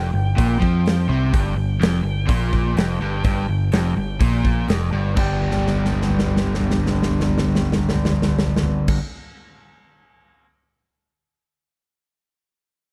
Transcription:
Already playing: F1 F2 G5
0.13 G1 G2
0.37 A#1 A#2, kick, open hi-hat
0.60 F2 F3, kick
0.86 snare, open hi-hat
1.09 C2 C3
1.32 G1 G2, kick, open hi-hat
1.56 G1 G2
1.80 F1 F2, snare, open hi-hat
2.04 G1 G2
2.27 A#1 A#2, kick, open hi-hat
2.53 kick
2.77 F1 F2, snare, open hi-hat
3.01 G1 G2
3.24 G1 G2, kick, open hi-hat
3.49 G1 G2
3.72 F1 F2, snare, open hi-hat
3.97 G1 G2
4.20 A#1 A#2, kick, open hi-hat
4.45 kick
4.68 F1 F2, snare, open hi-hat
4.92 G1 G2
5.15 G1 G2 D3 G3 B3 D4, kick, crash
5.19 G4
5.41 floor tom
5.51 snare
5.57 floor tom
5.67 snare
5.74 floor tom
5.85 snare
5.92 floor tom
6.02 snare
6.09 floor tom
6.19 snare
6.26 floor tom
6.37 snare
6.44 floor tom
6.54 snare
6.60 floor tom
6.71 snare
6.77 floor tom
6.86 snare
6.93 floor tom
7.02 snare
7.10 floor tom
7.20 snare
7.27 floor tom
7.38 snare
7.44 floor tom
7.55 snare
7.61 floor tom
7.72 snare
7.78 floor tom
7.89 snare
7.96 floor tom
8.05 snare
8.11 floor tom
8.22 snare
8.29 floor tom
8.39 snare
8.46 floor tom
8.56 snare
8.63 floor tom
8.88 kick, crash

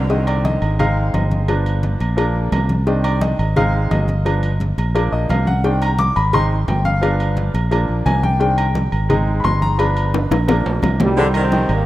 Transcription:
Already playing: C2
0.10 D3 D#3 C4 D#5, cowbell, high conga
0.27 D5, cowbell, high conga, low agogo
0.45 D#5, cowbell, high conga, low timbale
0.62 G#1, low agogo
0.79 G#3 C4 D#4 F5, cowbell, high conga, low conga, low agogo
0.97 high conga
1.14 G1 D#5, cowbell, high conga, low timbale, low agogo
1.31 cowbell, high conga
1.48 F3 B3 D4, cowbell, high conga, low agogo
1.66 high conga, low agogo
1.83 cowbell, high conga, low timbale
2.00 A#1, cowbell, high conga, low agogo
2.17 F3 A#3 D4, cowbell, high conga, low agogo
2.36 high conga
2.52 C2, cowbell, high conga, low timbale, low agogo
2.69 cowbell, high conga
2.86 D#3 C4 D4 D#5, cowbell, high conga
3.04 D5, cowbell, high conga, low agogo
3.21 D#5, cowbell, high conga, low timbale
3.39 G#1, low agogo
3.56 G#3 C4 D#4 F5, cowbell, high conga, low conga, low agogo
3.74 high conga
3.91 G1 D#5, cowbell, high conga, low timbale, low agogo
4.08 cowbell, high conga
4.25 F3 B3 D4, cowbell, high conga, low agogo
4.43 high conga, low agogo
4.60 cowbell, high conga, low timbale
4.78 A#1, cowbell, high conga, low agogo
4.95 F3 A#3 D4 D5, cowbell, high conga, low agogo
5.12 A#1 D#5, high conga
5.29 C2 F5, cowbell, high conga, low timbale, low agogo
5.47 F#5, cowbell, high conga
5.64 D#3 C4 D4 G5, cowbell, high conga
5.82 A#5, cowbell, high conga, low agogo
5.99 D6, cowbell, high conga, low timbale
6.16 G#1 B5, low agogo
6.33 G#3 C4 D#4 C6, cowbell, high conga, low conga, low agogo
6.51 high conga
6.68 G1 G5, cowbell, high conga, low timbale, low agogo
6.85 F5, cowbell, high conga
7.01 F3 B3 D4 F5, cowbell, high conga, low agogo
7.19 high conga, low agogo
7.37 cowbell, high conga, low timbale
7.54 A#1, cowbell, high conga, low agogo
7.71 F3 A#3 D4, cowbell, high conga, low agogo
7.88 A#1, high conga
8.06 C2 G#5, cowbell, high conga, low timbale, low agogo
8.23 G5, cowbell, high conga
8.39 D#3 C4 D4 G5, cowbell, high conga
8.58 cowbell, high conga, low agogo
8.75 cowbell, high conga, low timbale
8.92 G#1, low agogo
9.09 G#3 C4 D#4, cowbell, high conga, low conga, low agogo
9.28 high conga
9.40 B5
9.44 G1 C6, cowbell, high conga, low timbale, low agogo
9.62 A#5, cowbell, high conga
9.78 F3 B3 D4 B5, cowbell, high conga, low agogo
9.97 high conga, low agogo
10.14 cowbell, high bongo, high conga, high timbale
10.31 A#1, cowbell, high bongo, high conga, high timbale, low agogo
10.47 F3 A#3 D4, cowbell, low bongo, high conga, high timbale, low agogo
10.66 high conga, low timbale
10.82 C2, cowbell, low bongo, high conga, low timbale, low agogo
11.00 D3 D#3 G3, cowbell, low bongo, high conga, low timbale
11.17 C3 D3 C4 C5, cowbell, high conga
11.34 D#3 G3 C4, cowbell, high conga, low agogo
11.52 D#3 D#4 G4, cowbell, high conga, low timbale
11.69 G#1 A#3, low agogo

